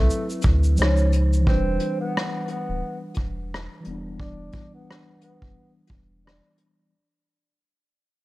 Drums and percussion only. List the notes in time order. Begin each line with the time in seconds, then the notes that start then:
0.10 shaker
0.30 shaker
0.42 kick, closed hi-hat, shaker
0.64 shaker
0.77 shaker
0.82 cross-stick
0.97 shaker
1.13 closed hi-hat, shaker
1.33 shaker
1.47 kick
1.80 closed hi-hat
2.17 cross-stick
2.48 closed hi-hat
3.14 kick, closed hi-hat
3.54 cross-stick
3.85 closed hi-hat
4.20 kick
4.52 kick, closed hi-hat
4.91 cross-stick
5.21 closed hi-hat
5.42 kick
5.87 kick, closed hi-hat
6.27 cross-stick
6.58 closed hi-hat